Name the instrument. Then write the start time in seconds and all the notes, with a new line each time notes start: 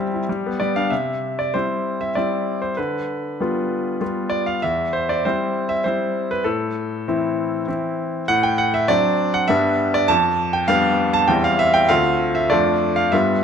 grand piano
Already playing: G3 C4 E4 G4
0.14 E4
0.29 G3
0.46 B3
0.60 G3 D5
0.76 D4 F5
0.90 C3 E5
1.39 D5
1.54 G3 C4 E4 C5
2.01 E5
2.15 G3 C4 E4 D5
2.62 C5
2.77 D3 B4
3.41 G3 B3 F4
4.01 G3 B3 F4
4.30 D5
4.46 F5
4.62 E2 E5
4.93 C5
5.09 D5
5.25 G3 C4 E4 C5
5.69 E5
5.84 G3 C4 E4 C5
6.31 B4
6.44 A2 A4
7.08 E3 C4 E4
7.68 E3 C4 E4
8.28 A2 F#5
8.43 G5
8.58 F#5
8.74 E5
8.88 F#3 C4 D4 D5
9.34 F#5
9.48 G2 G3 B3 D4 E5
9.94 D5
10.08 F2 A5
10.53 G5
10.68 G3 B3 D4 F5
11.13 A5
11.28 E2 G3 C4 E4 G5
11.44 F5
11.59 E5
11.74 G5
11.89 D2 A3 C4 F4 F5
12.35 E5
12.50 F2 A3 D4 F4 D5
12.96 F5
13.12 G2 G3 B3 F4 E5